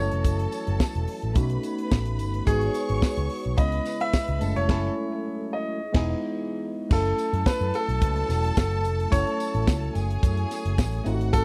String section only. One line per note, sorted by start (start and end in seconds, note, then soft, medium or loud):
0.00 1.33 A4 medium
0.00 1.33 A5 loud
1.37 2.45 B4 medium
1.37 2.45 B5 medium
2.48 3.56 C#5 medium
2.48 3.56 C#6 loud
3.58 4.40 B4 medium
3.58 4.40 B5 medium
4.41 4.68 A4 medium
4.41 4.68 A5 medium
4.69 4.88 A4 loud
4.69 4.88 A5 loud
5.94 6.13 G#4 loud
5.94 6.13 G#5 medium
6.91 9.91 A4 medium
6.91 9.91 A5 loud
9.96 11.04 G#4 medium
9.96 11.04 G#5 loud
11.07 11.45 F#4 medium
11.07 11.45 F#5 loud